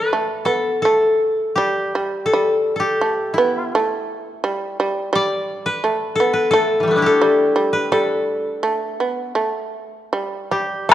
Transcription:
0, 0, Header, 1, 3, 480
1, 0, Start_track
1, 0, Tempo, 730816
1, 1516, Time_signature, 4, 2, 24, 8
1, 1516, Tempo, 700117
1, 5356, Tempo, 734394
1, 6316, Tempo, 763359
1, 7300, End_track
2, 0, Start_track
2, 0, Title_t, "Koto"
2, 0, Program_c, 0, 107
2, 0, Note_on_c, 0, 71, 59
2, 0, Note_on_c, 0, 74, 63
2, 296, Note_on_c, 0, 69, 57
2, 536, Note_off_c, 0, 69, 0
2, 539, Note_on_c, 0, 69, 60
2, 625, Note_off_c, 0, 74, 0
2, 1022, Note_on_c, 0, 67, 57
2, 1106, Note_off_c, 0, 71, 0
2, 1480, Note_off_c, 0, 69, 0
2, 1482, Note_on_c, 0, 69, 61
2, 1822, Note_off_c, 0, 69, 0
2, 1825, Note_on_c, 0, 69, 40
2, 1849, Note_off_c, 0, 67, 0
2, 1852, Note_on_c, 0, 67, 56
2, 2221, Note_on_c, 0, 64, 51
2, 3129, Note_off_c, 0, 69, 0
2, 3250, Note_off_c, 0, 67, 0
2, 3467, Note_on_c, 0, 74, 75
2, 3773, Note_off_c, 0, 64, 0
2, 3813, Note_on_c, 0, 71, 69
2, 4153, Note_on_c, 0, 69, 65
2, 4274, Note_off_c, 0, 71, 0
2, 4276, Note_on_c, 0, 71, 58
2, 4392, Note_off_c, 0, 69, 0
2, 4395, Note_on_c, 0, 69, 69
2, 4564, Note_off_c, 0, 74, 0
2, 4596, Note_on_c, 0, 52, 28
2, 4616, Note_on_c, 0, 55, 32
2, 4647, Note_on_c, 0, 57, 35
2, 4670, Note_on_c, 0, 59, 41
2, 4705, Note_on_c, 0, 62, 41
2, 4716, Note_on_c, 0, 64, 46
2, 4746, Note_off_c, 0, 52, 0
2, 4747, Note_on_c, 0, 67, 49
2, 4772, Note_off_c, 0, 69, 0
2, 4775, Note_on_c, 0, 69, 64
2, 4816, Note_off_c, 0, 55, 0
2, 5230, Note_off_c, 0, 71, 0
2, 5232, Note_on_c, 0, 71, 59
2, 5359, Note_off_c, 0, 69, 0
2, 5362, Note_on_c, 0, 69, 59
2, 6109, Note_off_c, 0, 67, 0
2, 6225, Note_off_c, 0, 64, 0
2, 6320, Note_off_c, 0, 62, 0
2, 6396, Note_off_c, 0, 71, 0
2, 6455, Note_off_c, 0, 59, 0
2, 6556, Note_off_c, 0, 57, 0
2, 6771, Note_off_c, 0, 69, 0
2, 7030, Note_on_c, 0, 67, 45
2, 7267, Note_on_c, 0, 69, 65
2, 7300, Note_off_c, 0, 67, 0
2, 7300, Note_off_c, 0, 69, 0
2, 7300, End_track
3, 0, Start_track
3, 0, Title_t, "Shamisen"
3, 0, Program_c, 1, 106
3, 0, Note_on_c, 1, 55, 57
3, 77, Note_off_c, 1, 55, 0
3, 84, Note_on_c, 1, 57, 49
3, 300, Note_off_c, 1, 57, 0
3, 303, Note_on_c, 1, 59, 46
3, 554, Note_off_c, 1, 59, 0
3, 559, Note_on_c, 1, 57, 53
3, 1033, Note_off_c, 1, 57, 0
3, 1036, Note_on_c, 1, 55, 53
3, 1274, Note_off_c, 1, 55, 0
3, 1282, Note_on_c, 1, 55, 51
3, 1517, Note_off_c, 1, 55, 0
3, 1534, Note_on_c, 1, 55, 59
3, 1997, Note_off_c, 1, 55, 0
3, 2000, Note_on_c, 1, 57, 53
3, 2240, Note_off_c, 1, 57, 0
3, 2251, Note_on_c, 1, 59, 49
3, 2490, Note_off_c, 1, 59, 0
3, 2505, Note_on_c, 1, 57, 62
3, 2973, Note_off_c, 1, 57, 0
3, 2976, Note_on_c, 1, 55, 57
3, 3213, Note_off_c, 1, 55, 0
3, 3223, Note_on_c, 1, 55, 58
3, 3441, Note_off_c, 1, 55, 0
3, 3449, Note_on_c, 1, 55, 68
3, 3922, Note_off_c, 1, 55, 0
3, 3936, Note_on_c, 1, 57, 55
3, 4164, Note_off_c, 1, 57, 0
3, 4184, Note_on_c, 1, 59, 54
3, 4411, Note_off_c, 1, 59, 0
3, 4414, Note_on_c, 1, 57, 63
3, 4877, Note_off_c, 1, 57, 0
3, 4880, Note_on_c, 1, 55, 63
3, 5107, Note_off_c, 1, 55, 0
3, 5115, Note_on_c, 1, 55, 57
3, 5354, Note_off_c, 1, 55, 0
3, 5364, Note_on_c, 1, 55, 67
3, 5825, Note_off_c, 1, 55, 0
3, 5827, Note_on_c, 1, 57, 56
3, 6067, Note_off_c, 1, 57, 0
3, 6070, Note_on_c, 1, 59, 47
3, 6296, Note_off_c, 1, 59, 0
3, 6299, Note_on_c, 1, 57, 51
3, 6785, Note_off_c, 1, 57, 0
3, 6787, Note_on_c, 1, 55, 51
3, 7023, Note_off_c, 1, 55, 0
3, 7030, Note_on_c, 1, 55, 46
3, 7264, Note_off_c, 1, 55, 0
3, 7267, Note_on_c, 1, 57, 58
3, 7300, Note_off_c, 1, 57, 0
3, 7300, End_track
0, 0, End_of_file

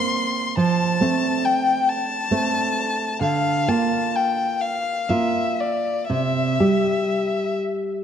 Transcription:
0, 0, Header, 1, 3, 480
1, 0, Start_track
1, 0, Key_signature, -1, "major"
1, 0, Tempo, 873362
1, 329, Time_signature, 6, 3, 24, 8
1, 1775, Tempo, 936037
1, 2735, Tempo, 988468
1, 4161, End_track
2, 0, Start_track
2, 0, Title_t, "Violin"
2, 0, Program_c, 0, 40
2, 0, Note_on_c, 0, 84, 71
2, 321, Note_off_c, 0, 84, 0
2, 324, Note_on_c, 0, 81, 69
2, 797, Note_on_c, 0, 79, 59
2, 805, Note_off_c, 0, 81, 0
2, 1040, Note_on_c, 0, 81, 65
2, 1048, Note_off_c, 0, 79, 0
2, 1768, Note_off_c, 0, 81, 0
2, 1772, Note_on_c, 0, 77, 60
2, 2009, Note_on_c, 0, 81, 55
2, 2017, Note_off_c, 0, 77, 0
2, 2251, Note_on_c, 0, 79, 49
2, 2259, Note_off_c, 0, 81, 0
2, 2483, Note_on_c, 0, 77, 53
2, 2491, Note_off_c, 0, 79, 0
2, 2729, Note_on_c, 0, 76, 51
2, 2736, Note_off_c, 0, 77, 0
2, 2979, Note_on_c, 0, 74, 49
2, 2987, Note_off_c, 0, 76, 0
2, 3220, Note_off_c, 0, 74, 0
2, 3224, Note_on_c, 0, 76, 51
2, 3924, Note_off_c, 0, 76, 0
2, 4161, End_track
3, 0, Start_track
3, 0, Title_t, "Nylon-string guitar"
3, 0, Program_c, 1, 24
3, 0, Note_on_c, 1, 58, 36
3, 0, Note_on_c, 1, 60, 43
3, 302, Note_off_c, 1, 58, 0
3, 303, Note_off_c, 1, 60, 0
3, 313, Note_on_c, 1, 53, 48
3, 550, Note_off_c, 1, 53, 0
3, 553, Note_on_c, 1, 57, 36
3, 556, Note_on_c, 1, 60, 38
3, 1257, Note_off_c, 1, 57, 0
3, 1258, Note_off_c, 1, 60, 0
3, 1270, Note_on_c, 1, 57, 35
3, 1271, Note_on_c, 1, 60, 37
3, 1747, Note_off_c, 1, 57, 0
3, 1747, Note_off_c, 1, 60, 0
3, 1762, Note_on_c, 1, 50, 46
3, 2000, Note_off_c, 1, 50, 0
3, 2006, Note_on_c, 1, 58, 33
3, 2008, Note_on_c, 1, 65, 37
3, 2711, Note_off_c, 1, 58, 0
3, 2711, Note_off_c, 1, 65, 0
3, 2729, Note_on_c, 1, 58, 31
3, 2735, Note_on_c, 1, 65, 35
3, 3195, Note_off_c, 1, 58, 0
3, 3198, Note_off_c, 1, 65, 0
3, 3218, Note_on_c, 1, 48, 40
3, 3451, Note_off_c, 1, 48, 0
3, 3462, Note_on_c, 1, 55, 30
3, 3463, Note_on_c, 1, 67, 31
3, 4158, Note_off_c, 1, 55, 0
3, 4158, Note_off_c, 1, 67, 0
3, 4161, End_track
0, 0, End_of_file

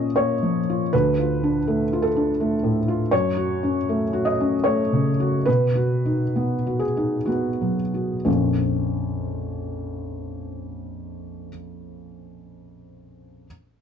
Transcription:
0, 0, Header, 1, 2, 480
1, 0, Start_track
1, 0, Tempo, 759494
1, 585, Time_signature, 3, 2, 24, 8
1, 1059, Tempo, 722892
1, 2019, Tempo, 765306
1, 2979, Tempo, 819672
1, 3459, Tempo, 874636
1, 3939, Tempo, 930233
1, 4419, Tempo, 1003344
1, 6339, Tempo, 978793
1, 7577, End_track
2, 0, Start_track
2, 0, Title_t, "Felt piano"
2, 0, Program_c, 0, 0
2, 0, Control_c, 0, 64, 127
2, 0, Note_on_c, 0, 46, 42
2, 0, Note_on_c, 0, 58, 37
2, 0, Note_on_c, 0, 61, 32
2, 0, Note_on_c, 0, 65, 33
2, 0, Note_on_c, 0, 73, 59
2, 0, Note_on_c, 0, 75, 56
2, 96, Note_off_c, 0, 75, 0
2, 99, Note_off_c, 0, 73, 0
2, 99, Note_on_c, 0, 73, 64
2, 111, Note_off_c, 0, 58, 0
2, 111, Note_on_c, 0, 58, 39
2, 202, Note_off_c, 0, 61, 0
2, 270, Note_on_c, 0, 53, 32
2, 366, Note_off_c, 0, 58, 0
2, 439, Note_off_c, 0, 65, 0
2, 439, Note_on_c, 0, 65, 35
2, 524, Note_off_c, 0, 53, 0
2, 555, Note_off_c, 0, 46, 0
2, 584, Note_off_c, 0, 73, 0
2, 587, Note_on_c, 0, 71, 62
2, 592, Note_off_c, 0, 65, 0
2, 595, Note_on_c, 0, 38, 44
2, 596, Control_c, 0, 64, 0
2, 708, Control_c, 0, 64, 127
2, 754, Note_on_c, 0, 65, 36
2, 906, Note_on_c, 0, 62, 37
2, 1001, Note_off_c, 0, 65, 0
2, 1058, Note_on_c, 0, 57, 39
2, 1158, Note_off_c, 0, 62, 0
2, 1227, Note_on_c, 0, 65, 39
2, 1290, Note_on_c, 0, 69, 56
2, 1301, Note_off_c, 0, 71, 0
2, 1316, Note_off_c, 0, 57, 0
2, 1383, Note_on_c, 0, 62, 37
2, 1477, Note_off_c, 0, 65, 0
2, 1541, Note_on_c, 0, 57, 40
2, 1634, Note_off_c, 0, 62, 0
2, 1696, Note_on_c, 0, 45, 37
2, 1794, Note_off_c, 0, 57, 0
2, 1859, Note_on_c, 0, 65, 39
2, 1954, Note_off_c, 0, 45, 0
2, 1997, Note_off_c, 0, 38, 0
2, 2014, Note_off_c, 0, 69, 0
2, 2014, Note_on_c, 0, 73, 66
2, 2020, Note_off_c, 0, 65, 0
2, 2021, Note_on_c, 0, 42, 48
2, 2029, Control_c, 0, 64, 0
2, 2118, Control_c, 0, 64, 127
2, 2174, Note_on_c, 0, 66, 41
2, 2338, Note_on_c, 0, 61, 38
2, 2429, Note_off_c, 0, 66, 0
2, 2501, Note_on_c, 0, 57, 41
2, 2592, Note_off_c, 0, 61, 0
2, 2652, Note_on_c, 0, 66, 39
2, 2727, Note_on_c, 0, 75, 59
2, 2732, Note_off_c, 0, 73, 0
2, 2754, Note_off_c, 0, 57, 0
2, 2821, Note_on_c, 0, 61, 37
2, 2911, Note_off_c, 0, 66, 0
2, 2969, Note_on_c, 0, 73, 67
2, 2974, Note_off_c, 0, 75, 0
2, 2980, Note_on_c, 0, 57, 42
2, 3074, Note_off_c, 0, 61, 0
2, 3139, Note_on_c, 0, 49, 37
2, 3230, Note_off_c, 0, 57, 0
2, 3299, Note_on_c, 0, 66, 36
2, 3395, Note_off_c, 0, 49, 0
2, 3436, Note_off_c, 0, 42, 0
2, 3449, Note_on_c, 0, 71, 59
2, 3454, Note_off_c, 0, 73, 0
2, 3460, Note_off_c, 0, 66, 0
2, 3461, Note_on_c, 0, 47, 42
2, 3470, Control_c, 0, 64, 0
2, 3557, Control_c, 0, 64, 127
2, 3614, Note_on_c, 0, 66, 38
2, 3779, Note_on_c, 0, 63, 35
2, 3873, Note_off_c, 0, 66, 0
2, 3945, Note_on_c, 0, 59, 33
2, 4034, Note_off_c, 0, 63, 0
2, 4104, Note_on_c, 0, 66, 32
2, 4170, Note_on_c, 0, 68, 45
2, 4171, Note_off_c, 0, 71, 0
2, 4194, Note_off_c, 0, 59, 0
2, 4260, Note_on_c, 0, 63, 28
2, 4357, Note_off_c, 0, 66, 0
2, 4409, Note_on_c, 0, 66, 39
2, 4416, Note_off_c, 0, 68, 0
2, 4418, Note_on_c, 0, 59, 30
2, 4513, Note_off_c, 0, 63, 0
2, 4580, Note_on_c, 0, 54, 25
2, 4649, Note_off_c, 0, 66, 0
2, 4670, Note_off_c, 0, 59, 0
2, 4736, Note_on_c, 0, 66, 26
2, 4833, Note_off_c, 0, 54, 0
2, 4874, Note_off_c, 0, 47, 0
2, 4883, Note_on_c, 0, 61, 33
2, 4884, Note_on_c, 0, 34, 33
2, 4887, Note_on_c, 0, 41, 29
2, 4888, Note_on_c, 0, 53, 29
2, 4889, Note_on_c, 0, 58, 29
2, 4893, Note_off_c, 0, 66, 0
2, 4904, Control_c, 0, 64, 0
2, 5011, Control_c, 0, 64, 127
2, 6435, Note_off_c, 0, 61, 0
2, 6436, Note_off_c, 0, 34, 0
2, 6439, Note_off_c, 0, 41, 0
2, 6440, Note_off_c, 0, 53, 0
2, 6442, Note_off_c, 0, 58, 0
2, 7407, Control_c, 0, 64, 0
2, 7577, End_track
0, 0, End_of_file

